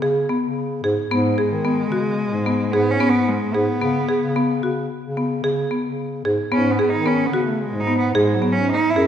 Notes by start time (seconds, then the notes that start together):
0.02 C#3 G#4
0.29 B3
0.43 C#3
0.83 G#2 G#4
1.10 G#2 G#3 B3
1.38 G#4
1.51 D#3
1.65 B3
1.91 C#3 F#4
2.32 G#2
2.46 B3
2.72 G#2 B3 G#4
2.91 C#4
3.00 B3
3.09 B3
3.13 G#2
3.28 G#3
3.54 G#2 B3 G#4
3.81 C#3 B3
4.09 G#4
4.21 C#3
4.36 B3
4.63 C#3 F#4
5.04 C#3
5.17 B3
5.44 C#3 G#4
5.71 B3
5.85 C#3
6.25 G#2 G#4
6.52 G#2 B3 C#4
6.71 B3
6.79 G#4
6.90 D#3 D#4
7.06 B3 C#4
7.26 B3
7.33 C#3 F#4
7.44 A3
7.57 A3
7.61 G#3
7.74 G#2
7.80 D#4
7.87 B3
7.98 B3
8.14 G#2 G#3 G#4
8.34 F#3
8.42 B3
8.53 G#2 C#4
8.71 D#4
8.90 E4
8.96 F#2 G#4